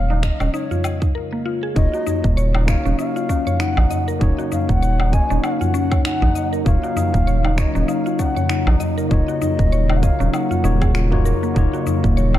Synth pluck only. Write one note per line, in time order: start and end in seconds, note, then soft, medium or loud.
0.10 0.22 D#4 medium
0.23 0.39 D#5 medium
0.41 0.53 C#4 medium
0.54 0.70 D#4 loud
0.71 0.83 F4 medium
0.84 1.00 D#5 medium
1.02 1.14 D#4 medium
1.15 1.31 A#4 medium
1.32 1.45 A#3 medium
1.46 1.62 F4 medium
1.63 1.76 G#4 medium
1.76 1.92 D#4 medium
1.93 2.05 F#4 medium
2.07 2.17 D#4 medium
2.24 2.36 A#3 medium
2.37 2.54 C#5 loud
2.55 2.67 D#4 medium
2.68 2.84 D#5 medium
2.85 2.98 C#4 loud
2.99 3.15 D#4 loud
3.16 3.28 F4 medium
3.29 3.45 C#4 loud
3.47 3.59 C#5 loud
3.60 3.76 D#4 medium
3.77 3.89 D#4 loud
3.91 4.06 D#5 medium
4.08 4.20 A#4 medium
4.21 4.37 D#4 medium
4.38 4.50 F#4 medium
4.52 4.62 D#4 medium
4.69 4.81 A#3 medium
4.82 4.99 C#5 loud
5.00 5.12 D#4 medium
5.13 5.29 D#5 medium
5.30 5.43 C#4 loud
5.44 5.60 D#4 loud
5.61 5.73 F4 medium
5.74 5.90 C#4 loud
5.92 6.04 C#5 loud
6.05 6.21 D#4 medium
6.22 6.34 D#4 loud
6.35 6.51 D#5 medium
6.53 6.65 A#4 medium
6.66 6.82 D#4 medium
6.83 6.95 F#4 medium
6.97 7.07 D#4 medium
7.14 7.26 A#3 medium
7.27 7.44 C#5 loud
7.45 7.57 D#4 medium
7.58 7.74 D#5 medium
7.75 7.88 C#4 loud
7.88 8.05 D#4 loud
8.06 8.18 F4 medium
8.19 8.35 C#4 loud
8.36 8.49 C#5 loud
8.50 8.65 D#4 medium
8.67 8.79 D#4 loud
8.80 8.96 D#5 medium
8.98 9.10 A#4 medium
9.11 9.27 D#4 medium
9.28 9.40 F#4 medium
9.42 9.52 D#4 loud
9.59 9.71 A#3 medium
9.72 9.89 C#5 loud
9.90 10.02 D#4 medium
10.03 10.18 D#5 medium
10.20 10.33 C#4 loud
10.34 10.50 D#4 medium
10.51 10.63 F4 medium
10.64 10.74 D#4 loud
10.81 10.94 G#4 medium
10.95 11.10 F4 medium
11.12 11.25 F#4 medium
11.25 11.42 A#4 medium
11.43 11.55 A#3 medium
11.56 11.72 D#4 medium
11.73 11.85 F#4 medium
11.87 11.96 D#4 medium
12.04 12.16 A#3 medium
12.17 12.34 C#5 loud
12.35 12.39 D#4 medium